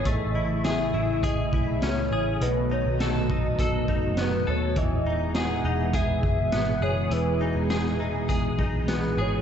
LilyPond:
<<
  \new Staff \with { instrumentName = "Soft synth lead" } { \time 4/4 \key e \major \tempo 4 = 102 dis''4 e''4 dis''4 cis''4 | b'8 cis''8 dis''2 b'8 cis''8 | dis''4 fis''4 e''4. cis''8 | b'4. r4. b'8 cis''8 | }
  \new Staff \with { instrumentName = "Clean electric guitar" } { \time 4/4 \key e \major a8 e'8 gis'8 e'8 gis'8 e'8 cis'8 gis'8 | b,8 dis'8 a'8 dis'8 a'8 dis'8 b8 a'8 | e8 dis'8 gis'8 dis'8 gis'4 b8 gis'8 | e8 dis'8 gis'8 dis'8 gis'8 dis'8 b8 gis'8 | }
  \new Staff \with { instrumentName = "String machine" } { \clef bass \time 4/4 \key e \major <cis e a e'>1 | <dis fis b fis'>1 | <b, e gis b gis'>1~ | <b, e gis b gis'>1 | }
  \new Staff \with { instrumentName = "Picked electric bass" } { \clef bass \time 4/4 \key e \major a,,4. a,,4 b,,8 cis,8 a,,8 | b,,8. b,,4.~ b,,16 fis,,4 dis,8 | e,,4. e,,4 fis,,8 gis,,8 fis,,8 | e,,8. e,,4.~ e,,16 b,,4 gis,,8 | }
  \new DrumStaff \with { instrumentName = "Drums" } \drummode { \time 4/4 <hh bd>4 <hh sn>4 <hh bd>8 bd8 <hh sn>4 | hh4 <hh sn>8 bd8 <hh bd>8 bd8 <hh sn>4 | <hh bd>4 <hh sn>4 <hh bd>8 bd8 <hh sn>4 | hh4 <hh sn>4 <hh bd>8 bd8 <hh sn>4 | }
>>